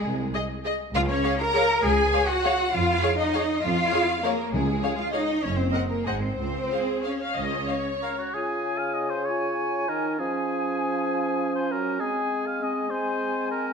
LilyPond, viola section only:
\new Staff \with { instrumentName = "Viola section" } { \time 3/4 \key des \major \tempo 4 = 196 r4 <aes' ees''>4 <aes' ees''>4 | r4 <aes' des''>4 <aes' des''>4 | r4 <aes' des''>4 <aes' des''>4 | r4 <aes' des''>4 <aes' des''>4 |
r4 <aes' des''>4 <aes' des''>4 | r4 <aes' des''>4 <aes' des''>4 | r4 <bes' ees''>4 <c'' ees''>4 | r4 aes'4. f''8 |
ees''4 des''2 | r2. | r2. | r2. |
r2. | r2. | r2. | }